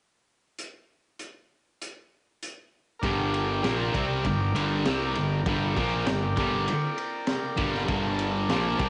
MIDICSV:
0, 0, Header, 1, 5, 480
1, 0, Start_track
1, 0, Key_signature, -2, "minor"
1, 0, Tempo, 609137
1, 463, Time_signature, 4, 2, 24, 8
1, 7005, End_track
2, 0, Start_track
2, 0, Title_t, "Transistor combo organ"
2, 0, Program_c, 0, 18
2, 2359, Note_on_c, 0, 70, 72
2, 2375, Note_on_c, 0, 74, 65
2, 2387, Note_on_c, 0, 79, 81
2, 6177, Note_off_c, 0, 70, 0
2, 6185, Note_off_c, 0, 74, 0
2, 6191, Note_off_c, 0, 79, 0
2, 6199, Note_on_c, 0, 70, 70
2, 6205, Note_on_c, 0, 74, 64
2, 6213, Note_on_c, 0, 81, 79
2, 7005, Note_off_c, 0, 70, 0
2, 7005, Note_off_c, 0, 74, 0
2, 7005, Note_off_c, 0, 81, 0
2, 7005, End_track
3, 0, Start_track
3, 0, Title_t, "Distorted electric guitar"
3, 0, Program_c, 1, 30
3, 2394, Note_on_c, 1, 43, 106
3, 2404, Note_on_c, 1, 50, 109
3, 2408, Note_on_c, 1, 55, 111
3, 2859, Note_off_c, 1, 50, 0
3, 2861, Note_off_c, 1, 55, 0
3, 2862, Note_on_c, 1, 46, 95
3, 2863, Note_off_c, 1, 43, 0
3, 2864, Note_on_c, 1, 53, 96
3, 2873, Note_on_c, 1, 58, 109
3, 3098, Note_off_c, 1, 46, 0
3, 3099, Note_off_c, 1, 53, 0
3, 3103, Note_off_c, 1, 58, 0
3, 3103, Note_on_c, 1, 48, 89
3, 3111, Note_on_c, 1, 55, 89
3, 3121, Note_on_c, 1, 60, 95
3, 3338, Note_off_c, 1, 48, 0
3, 3342, Note_off_c, 1, 55, 0
3, 3346, Note_on_c, 1, 50, 78
3, 3347, Note_off_c, 1, 60, 0
3, 3349, Note_on_c, 1, 43, 71
3, 3539, Note_off_c, 1, 50, 0
3, 3540, Note_off_c, 1, 43, 0
3, 3581, Note_on_c, 1, 43, 93
3, 3586, Note_on_c, 1, 50, 99
3, 3598, Note_on_c, 1, 55, 88
3, 3817, Note_off_c, 1, 43, 0
3, 3819, Note_off_c, 1, 50, 0
3, 3825, Note_off_c, 1, 55, 0
3, 3834, Note_on_c, 1, 48, 107
3, 3839, Note_on_c, 1, 55, 103
3, 3840, Note_on_c, 1, 60, 104
3, 4059, Note_off_c, 1, 48, 0
3, 4059, Note_on_c, 1, 43, 65
3, 4062, Note_on_c, 1, 50, 71
3, 4066, Note_off_c, 1, 55, 0
3, 4066, Note_off_c, 1, 60, 0
3, 4255, Note_off_c, 1, 43, 0
3, 4256, Note_off_c, 1, 50, 0
3, 4306, Note_on_c, 1, 43, 105
3, 4314, Note_on_c, 1, 50, 99
3, 4319, Note_on_c, 1, 55, 111
3, 4539, Note_off_c, 1, 43, 0
3, 4543, Note_off_c, 1, 50, 0
3, 4545, Note_off_c, 1, 55, 0
3, 4546, Note_on_c, 1, 46, 95
3, 4552, Note_on_c, 1, 53, 107
3, 4562, Note_on_c, 1, 58, 111
3, 4772, Note_off_c, 1, 46, 0
3, 4772, Note_on_c, 1, 43, 69
3, 4776, Note_on_c, 1, 50, 77
3, 4781, Note_off_c, 1, 53, 0
3, 4786, Note_off_c, 1, 58, 0
3, 4970, Note_off_c, 1, 43, 0
3, 4972, Note_off_c, 1, 50, 0
3, 5027, Note_on_c, 1, 50, 98
3, 5028, Note_on_c, 1, 43, 90
3, 5034, Note_on_c, 1, 55, 97
3, 5258, Note_off_c, 1, 50, 0
3, 5259, Note_off_c, 1, 43, 0
3, 5262, Note_off_c, 1, 55, 0
3, 5965, Note_on_c, 1, 43, 84
3, 5969, Note_on_c, 1, 50, 91
3, 5981, Note_on_c, 1, 55, 109
3, 6194, Note_off_c, 1, 43, 0
3, 6202, Note_off_c, 1, 50, 0
3, 6203, Note_on_c, 1, 43, 94
3, 6211, Note_on_c, 1, 50, 104
3, 6214, Note_off_c, 1, 55, 0
3, 6223, Note_on_c, 1, 55, 123
3, 6684, Note_off_c, 1, 43, 0
3, 6688, Note_off_c, 1, 50, 0
3, 6693, Note_on_c, 1, 46, 102
3, 6694, Note_off_c, 1, 55, 0
3, 6698, Note_on_c, 1, 53, 97
3, 6704, Note_on_c, 1, 58, 106
3, 6921, Note_off_c, 1, 46, 0
3, 6924, Note_on_c, 1, 48, 83
3, 6927, Note_off_c, 1, 58, 0
3, 6928, Note_off_c, 1, 53, 0
3, 6930, Note_on_c, 1, 60, 116
3, 6931, Note_on_c, 1, 55, 90
3, 7005, Note_off_c, 1, 48, 0
3, 7005, Note_off_c, 1, 55, 0
3, 7005, Note_off_c, 1, 60, 0
3, 7005, End_track
4, 0, Start_track
4, 0, Title_t, "Fingered electric bass"
4, 0, Program_c, 2, 33
4, 2392, Note_on_c, 2, 31, 92
4, 2838, Note_off_c, 2, 31, 0
4, 2868, Note_on_c, 2, 34, 98
4, 3091, Note_off_c, 2, 34, 0
4, 3104, Note_on_c, 2, 36, 100
4, 3329, Note_off_c, 2, 36, 0
4, 3345, Note_on_c, 2, 31, 79
4, 3569, Note_off_c, 2, 31, 0
4, 3590, Note_on_c, 2, 31, 94
4, 3812, Note_off_c, 2, 31, 0
4, 3835, Note_on_c, 2, 36, 95
4, 4055, Note_off_c, 2, 36, 0
4, 4078, Note_on_c, 2, 31, 74
4, 4296, Note_off_c, 2, 31, 0
4, 4307, Note_on_c, 2, 31, 101
4, 4530, Note_off_c, 2, 31, 0
4, 4546, Note_on_c, 2, 34, 86
4, 4769, Note_off_c, 2, 34, 0
4, 4781, Note_on_c, 2, 31, 81
4, 5006, Note_off_c, 2, 31, 0
4, 5023, Note_on_c, 2, 31, 100
4, 5247, Note_off_c, 2, 31, 0
4, 5976, Note_on_c, 2, 31, 96
4, 6202, Note_off_c, 2, 31, 0
4, 6215, Note_on_c, 2, 31, 97
4, 6665, Note_off_c, 2, 31, 0
4, 6688, Note_on_c, 2, 34, 104
4, 6916, Note_off_c, 2, 34, 0
4, 6930, Note_on_c, 2, 36, 99
4, 7005, Note_off_c, 2, 36, 0
4, 7005, End_track
5, 0, Start_track
5, 0, Title_t, "Drums"
5, 461, Note_on_c, 9, 42, 60
5, 540, Note_off_c, 9, 42, 0
5, 941, Note_on_c, 9, 42, 51
5, 1019, Note_off_c, 9, 42, 0
5, 1431, Note_on_c, 9, 42, 65
5, 1510, Note_off_c, 9, 42, 0
5, 1912, Note_on_c, 9, 42, 59
5, 1991, Note_off_c, 9, 42, 0
5, 2386, Note_on_c, 9, 36, 100
5, 2388, Note_on_c, 9, 51, 107
5, 2465, Note_off_c, 9, 36, 0
5, 2467, Note_off_c, 9, 51, 0
5, 2632, Note_on_c, 9, 51, 70
5, 2710, Note_off_c, 9, 51, 0
5, 2868, Note_on_c, 9, 51, 94
5, 2872, Note_on_c, 9, 38, 103
5, 2947, Note_off_c, 9, 51, 0
5, 2951, Note_off_c, 9, 38, 0
5, 3107, Note_on_c, 9, 36, 111
5, 3110, Note_on_c, 9, 51, 78
5, 3186, Note_off_c, 9, 36, 0
5, 3189, Note_off_c, 9, 51, 0
5, 3345, Note_on_c, 9, 51, 101
5, 3347, Note_on_c, 9, 36, 102
5, 3424, Note_off_c, 9, 51, 0
5, 3426, Note_off_c, 9, 36, 0
5, 3591, Note_on_c, 9, 51, 84
5, 3670, Note_off_c, 9, 51, 0
5, 3825, Note_on_c, 9, 51, 104
5, 3829, Note_on_c, 9, 38, 115
5, 3904, Note_off_c, 9, 51, 0
5, 3908, Note_off_c, 9, 38, 0
5, 4061, Note_on_c, 9, 51, 74
5, 4140, Note_off_c, 9, 51, 0
5, 4303, Note_on_c, 9, 36, 117
5, 4303, Note_on_c, 9, 51, 97
5, 4382, Note_off_c, 9, 36, 0
5, 4382, Note_off_c, 9, 51, 0
5, 4544, Note_on_c, 9, 36, 98
5, 4546, Note_on_c, 9, 51, 64
5, 4623, Note_off_c, 9, 36, 0
5, 4625, Note_off_c, 9, 51, 0
5, 4779, Note_on_c, 9, 51, 91
5, 4782, Note_on_c, 9, 38, 121
5, 4857, Note_off_c, 9, 51, 0
5, 4861, Note_off_c, 9, 38, 0
5, 5021, Note_on_c, 9, 36, 112
5, 5021, Note_on_c, 9, 51, 75
5, 5099, Note_off_c, 9, 36, 0
5, 5099, Note_off_c, 9, 51, 0
5, 5261, Note_on_c, 9, 51, 103
5, 5339, Note_off_c, 9, 51, 0
5, 5498, Note_on_c, 9, 51, 69
5, 5577, Note_off_c, 9, 51, 0
5, 5727, Note_on_c, 9, 51, 91
5, 5731, Note_on_c, 9, 38, 99
5, 5805, Note_off_c, 9, 51, 0
5, 5809, Note_off_c, 9, 38, 0
5, 5968, Note_on_c, 9, 51, 73
5, 5974, Note_on_c, 9, 36, 109
5, 6046, Note_off_c, 9, 51, 0
5, 6052, Note_off_c, 9, 36, 0
5, 6101, Note_on_c, 9, 38, 34
5, 6180, Note_off_c, 9, 38, 0
5, 6211, Note_on_c, 9, 51, 88
5, 6214, Note_on_c, 9, 36, 107
5, 6290, Note_off_c, 9, 51, 0
5, 6293, Note_off_c, 9, 36, 0
5, 6452, Note_on_c, 9, 51, 72
5, 6531, Note_off_c, 9, 51, 0
5, 6693, Note_on_c, 9, 51, 84
5, 6697, Note_on_c, 9, 38, 107
5, 6772, Note_off_c, 9, 51, 0
5, 6776, Note_off_c, 9, 38, 0
5, 6929, Note_on_c, 9, 51, 81
5, 6930, Note_on_c, 9, 36, 106
5, 7005, Note_off_c, 9, 36, 0
5, 7005, Note_off_c, 9, 51, 0
5, 7005, End_track
0, 0, End_of_file